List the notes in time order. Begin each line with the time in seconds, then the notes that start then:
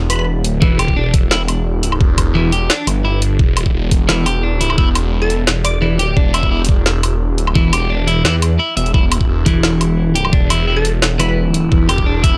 Already playing: E1
0.10 B4, closed hi-hat, low woodblock
0.13 low woodblock
0.16 B4, low woodblock
0.19 low woodblock
0.21 low woodblock
0.24 low woodblock
0.40 D#1
0.44 closed hi-hat
0.62 E1 E3, kick
0.79 G4, closed hi-hat, low woodblock
0.88 kick
0.96 E1 D4
1.14 kick, closed hi-hat
1.31 E1 E4, snare
1.48 closed hi-hat, low woodblock
1.83 closed hi-hat
1.92 low woodblock
2.01 E1, kick
2.18 kick, closed hi-hat, low woodblock
2.35 E3
2.52 G4, closed hi-hat
2.70 D4, snare
2.87 G1, closed hi-hat, low woodblock
3.05 E4
3.22 closed hi-hat
3.39 E1, kick
3.57 closed hi-hat, low woodblock
3.66 kick
3.74 E1
3.91 kick, closed hi-hat
4.09 E1 E3, snare
4.26 G4, closed hi-hat, low woodblock
4.43 D4
4.61 E4, closed hi-hat
4.70 low woodblock
4.78 E1 E4, kick
4.95 closed hi-hat, low woodblock
5.22 A4
5.30 closed hi-hat
5.47 E1, snare
5.64 D5, closed hi-hat, low woodblock
5.82 E3
5.95 D#1 G4
5.99 closed hi-hat
6.17 E1 D4, kick
6.34 E4, closed hi-hat, low woodblock
6.43 kick
6.51 E1 E4
6.65 closed hi-hat
6.69 kick
6.86 E1, snare
7.03 closed hi-hat, low woodblock
7.34 D#1
7.38 closed hi-hat
7.47 low woodblock
7.55 E1 E3, kick
7.73 G4, closed hi-hat, low woodblock
7.90 D4
8.07 E4, closed hi-hat
8.25 E2 E4, snare
8.42 closed hi-hat, low woodblock
8.59 E4
8.77 E1 E5, closed hi-hat
8.86 closed hi-hat
8.94 E1 E4, kick
9.12 closed hi-hat, low woodblock
9.21 kick
9.29 E1
9.46 E3, kick, closed hi-hat
9.63 E1, snare
9.81 closed hi-hat, low woodblock
10.15 G4, closed hi-hat
10.25 low woodblock
10.33 E1 D4, kick
10.50 E4, closed hi-hat, low woodblock
10.67 E4
10.76 A4
10.85 closed hi-hat
11.02 E1, snare
11.19 E3 B4, closed hi-hat, low woodblock
11.29 B4
11.54 closed hi-hat
11.72 E1, kick
11.89 G4, closed hi-hat, low woodblock
11.98 kick
12.06 E1 D4
12.23 E4, kick, closed hi-hat